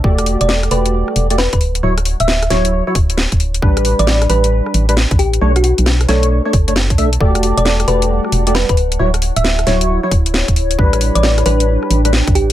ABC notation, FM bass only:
X:1
M:4/4
L:1/16
Q:"Swing 16ths" 1/4=134
K:Edor
V:1 name="FM bass" clef=bass
E,,,3 E,,,3 E,,,3 z E,,,3 D,,,3 | D,,,3 D,,,3 D,,,3 z D,,,3 D,,,3 | A,,,3 A,,,3 A,,,3 z A,,,3 A,,,3 | B,,,3 B,,,3 B,,,3 z F,,,3 B,,,3 |
E,,,3 E,,,3 E,,,3 z E,,,3 D,,,3 | D,,,3 D,,,3 D,,,3 z D,,,3 D,,,3 | A,,,3 A,,,3 A,,,3 z A,,,3 A,,,3 |]